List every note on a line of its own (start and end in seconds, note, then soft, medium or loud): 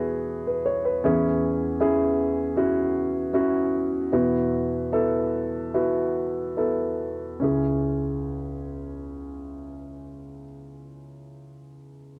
0.00 1.00 E2 soft
0.00 1.00 B2 medium
0.00 1.07 B3 medium
0.00 1.05 E4 medium
0.00 1.07 F#4 medium
0.00 0.24 G#4 medium
0.47 0.65 B4 soft
0.66 0.84 C#5 medium
0.85 1.21 B4 soft
1.04 4.09 E2 soft
1.04 4.09 E3 medium
1.04 1.77 C#4 medium
1.04 1.77 E4 medium
1.04 1.77 G#4 medium
1.80 2.53 C#4 medium
1.80 2.53 E4 medium
1.80 2.54 G#4 medium
2.56 3.30 C#4 medium
2.56 3.31 E4 soft
2.56 3.31 F#4 medium
3.33 4.09 C#4 medium
3.33 4.09 E4 medium
3.33 4.09 F#4 medium
4.12 7.39 E2 soft
4.12 7.39 B2 soft
4.12 4.89 B3 medium
4.12 4.89 E4 medium
4.12 4.89 F#4 medium
4.92 5.70 B3 medium
4.92 5.70 E4 medium
4.92 5.70 A4 medium
5.74 6.53 B3 medium
5.74 6.54 E4 soft
5.74 6.54 F#4 medium
6.57 7.38 B3 soft
6.57 7.39 E4 soft
6.57 7.39 A4 medium
7.40 10.42 C#2 soft
7.40 10.41 C#4 soft
7.40 10.43 E4 soft
7.40 10.45 G#4 medium